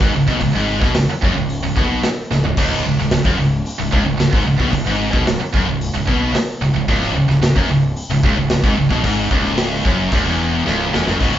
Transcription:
0.01 G#1 G#2, kick
0.15 C#1 C#2
0.27 B1 B2, kick
0.40 C#1 C#2, kick, open hi-hat
0.55 G#1 G#2
0.81 B1 B2, kick, snare
0.95 C#1 C#2, snare, open hi-hat
1.09 muted fingered electric bass stroke, muted distorted electric guitar stroke
1.22 F#1 F#2, kick
1.36 C#1 C#2
1.50 open hi-hat
1.63 C#1 C#2
1.77 B1 B2, kick
2.03 muted distorted electric guitar stroke, muted fingered electric bass stroke, snare, open hi-hat
2.31 C#1 C#2, snare
2.44 C#1 C#2, floor tom
2.57 C#1 C#2, kick, crash
2.86 C#1 C#2
2.99 C#1 C#2, snare
3.11 C#1 C#2, snare, open hi-hat
3.25 F#1 F#2, kick
3.39 C#1 C#2
3.66 open hi-hat
3.79 C#1 C#2
3.92 C#1 C#2, kick
4.06 C#1 C#2
4.20 C#1 C#2, snare, open hi-hat
4.33 G#1 G#2, kick
4.46 C#1 C#2
4.60 B1 B2, kick
4.73 C#1 C#2, kick, open hi-hat
4.86 G#1 G#2
5.13 B1 B2, kick
5.27 C#1 C#2, snare, open hi-hat
5.40 muted distorted electric guitar stroke, muted fingered electric bass stroke
5.54 F#1 F#2, kick
5.67 C#1 C#2
5.81 open hi-hat
5.94 C#1 C#2
6.07 B1 B2, kick
6.34 muted fingered electric bass stroke, muted distorted electric guitar stroke, snare, open hi-hat
6.61 C#1 C#2
6.75 C#1 C#2
6.88 C#1 C#2, kick, open hi-hat
7.15 C#1 C#2
7.28 C#1 C#2, snare
7.41 C#1 C#2, snare, open hi-hat
7.56 F#1 F#2, kick
7.69 C#1 C#2
7.96 open hi-hat
8.09 C#1 C#2
8.23 C#1 C#2, kick
8.36 C#1 C#2
8.50 C#1 C#2, snare, open hi-hat
8.64 G#1 G#2, kick
8.77 C#1 C#2
8.91 B1 B2, kick
9.04 G#1 G#2, kick, open hi-hat
9.31 C#1 C#2, kick
9.45 snare
9.57 snare, open hi-hat
9.85 F#1 F#2, kick
10.12 C#1 C#2, kick, open hi-hat
10.25 E1 E2
10.66 C#1 C#2, snare
10.92 E1 E2, snare
11.07 F#1 F#2, snare
11.19 C#1 C#2 G#2 C#3, kick, open hi-hat

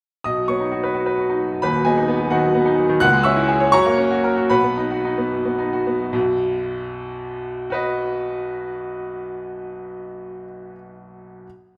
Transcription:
0.24 B1 D#5 D#6
0.37 F#3
0.48 B3 C#5 C#6
0.60 D#4
0.72 F#4
0.83 B4
0.94 F#4
1.06 B4
1.18 F#4
1.30 D#4
1.40 F#3
1.52 F#2
1.62 D#1 D#2 B4 B5
1.74 F#3
1.85 B3 G#4 D#5 G#5
1.97 D#4
2.08 B3
2.20 F#3
2.30 D#3 F#4 D#5 F#5
2.43 F#3
2.55 B3
2.66 D#4
2.77 F#3
2.89 D#3
3.00 C#2 F#5 F#6
3.13 G#3
3.23 C#4 E5 C#6 E6
3.37 E4
3.48 G#4
3.60 C#5
3.72 F#2 C#5 A#5 C#6
3.86 A#3
3.98 C#4
4.10 F#4
4.24 A#4
4.37 F#4
4.50 B1 B4 F#5 B5
4.64 B3
4.77 D#4
4.91 F#4
5.05 D#4
5.18 B3
5.31 F#2
5.45 B3
5.58 D#4
5.73 F#4
5.87 B3
6.00 F#2
6.13 B1 F#2
7.70 F#4 B4 D#5

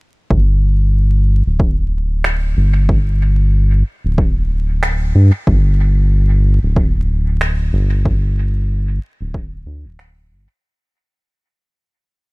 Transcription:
0.30 G1, kick
1.46 D1
1.60 kick
2.24 finger snap
2.57 G1
2.89 kick
4.04 D1
4.18 kick
4.83 finger snap
5.15 G2
5.47 G1, kick
6.63 D1
6.76 kick
7.41 finger snap
7.73 G1
8.05 kick
9.21 D1
9.34 kick
9.66 D2
9.85 D1
9.99 finger snap
10.31 G1

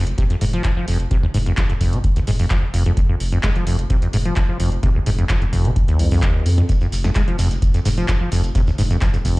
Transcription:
Already playing: F1
0.07 closed hi-hat
0.18 C3, kick, closed hi-hat
0.30 F2, closed hi-hat
0.41 F1 G#2, open hi-hat
0.53 F3, closed hi-hat
0.64 kick, clap, closed hi-hat
0.77 F3
0.88 F1 F2, open hi-hat
1.00 closed hi-hat
1.11 C3, kick, closed hi-hat
1.23 D#2
1.34 F1 G#2, open hi-hat
1.46 F2, closed hi-hat
1.57 F3, kick, clap, closed hi-hat
1.70 F1 F2, closed hi-hat
1.81 F1 F2, kick, open hi-hat
1.93 C3, closed hi-hat
2.04 kick, closed hi-hat
2.16 D#2, closed hi-hat
2.27 F1 G#2, open hi-hat
2.39 F2, open hi-hat
2.50 F3, kick, clap, closed hi-hat
2.74 F1 F2, open hi-hat
2.86 F2, closed hi-hat
2.97 F2, kick, closed hi-hat
3.09 F2
3.20 F1, open hi-hat
3.32 F2, closed hi-hat
3.43 G#3, kick, clap, closed hi-hat
3.56 F1 F3, closed hi-hat
3.67 F1 F2, open hi-hat
3.79 closed hi-hat
3.90 C3, kick, closed hi-hat
4.02 F2, closed hi-hat
4.13 F1 G#2, open hi-hat
4.25 F3, closed hi-hat
4.36 F3, kick, clap, closed hi-hat
4.49 F3
4.60 F1 F2, open hi-hat
4.72 closed hi-hat
4.83 C3, kick, closed hi-hat
4.95 D#2
5.06 F1 G#2, open hi-hat
5.18 F2, closed hi-hat
5.29 F3, kick, clap, closed hi-hat
5.42 F1 F2, closed hi-hat
5.53 F1 F2, kick, open hi-hat
5.65 C3, closed hi-hat
5.76 kick, closed hi-hat
5.88 D#2, closed hi-hat
5.99 C2 F2, open hi-hat
6.11 F2, open hi-hat
6.22 D#2, kick, clap, closed hi-hat
6.46 F2, open hi-hat
6.58 F2, closed hi-hat
6.69 F2, kick, closed hi-hat, shekere
6.81 F2, shekere
6.92 F1, open hi-hat, shekere
7.04 F2, snare, shekere
7.15 G#3, kick, clap, closed hi-hat, shekere
7.28 F1 F3, closed hi-hat
7.39 F1 F2, open hi-hat, shekere
7.51 closed hi-hat, shekere
7.62 kick, closed hi-hat, shekere
7.74 F2, closed hi-hat, shekere
7.85 F1 G#2, open hi-hat, shekere
7.97 F3, closed hi-hat, shekere
8.09 kick, clap, closed hi-hat, shekere
8.21 F3
8.32 F1 F2, open hi-hat, shekere
8.43 closed hi-hat, shekere
8.55 C3, kick, closed hi-hat, shekere
8.67 D#2, shekere
8.78 F1 G#2, open hi-hat, shekere
8.90 F2, closed hi-hat, shekere
9.02 F3, kick, clap, closed hi-hat, shekere
9.14 F1 F2, closed hi-hat, shekere
9.25 F1 F2, kick, open hi-hat, shekere

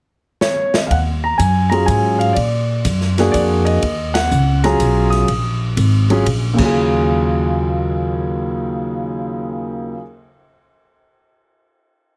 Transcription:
0.41 C#5, snare
0.74 D#5, snare
0.87 D#2 F5, kick, ride
0.91 F#5
1.24 A#5
1.38 F#2 G#5, kick, hi-hat pedal, ride
1.70 F#3 C#4 F4 G#4 A#5, ride
1.86 G#2 G#5, kick, hi-hat pedal, ride
2.19 F5, ride
2.33 A#2 D5, kick, ride
2.85 F#2, kick, hi-hat pedal, ride
3.01 snare
3.18 A#3 D4 F#4 G#4, snare, ride
3.32 F2 D5, kick, hi-hat pedal, ride
3.65 D#5, ride
3.82 D#2, kick, ride
4.14 F#5, snare, ride
4.31 C#2, hi-hat pedal
4.64 F#3 C#4 F4 G#4 A#5, snare, ride
4.80 B1, kick, hi-hat pedal, ride
5.10 D#6, snare, ride
5.28 A#1, kick, ride
5.77 G#1, kick, hi-hat pedal, ride
6.10 F#3 C#4 F4 G#4, ride
6.26 A#1, kick, ride
6.54 D#2 C#3
6.58 D#2 F#3 F4, kick, crash
6.65 G#4

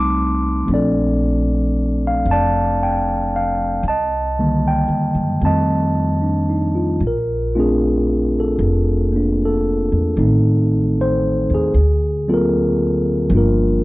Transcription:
Already playing: C2 G3 A3 C4 D#4 A5 C6 D6
0.66 A#1 F3 A3
0.70 C4 D4 D5
0.74 A4
2.07 F5
2.25 F1
2.31 D5 A5
2.83 G5
3.36 F5
3.83 C2
3.88 D#5 A5
4.39 D3 D#3 G3 A#3
4.68 G5
4.88 D#2
5.15 F#2
5.41 F2 D#3 G3 A3 C4 A5
5.46 D#5
6.22 D4
6.50 D#4
6.75 F4
7.00 A#1
7.07 A#4
7.55 A3 C4 D4 F4
7.60 G#4
8.40 A4
8.59 F1
9.12 A#3 D4
9.45 A4
9.92 E2
10.17 A1 D#3 A3 C4 D#4
11.01 C5
11.50 D#2
11.54 G#4
11.74 D2
12.28 F#3 A#3 C4 F4 A4
12.34 A#4
13.30 G1 F3 A#3 D4
13.35 F4 A#4

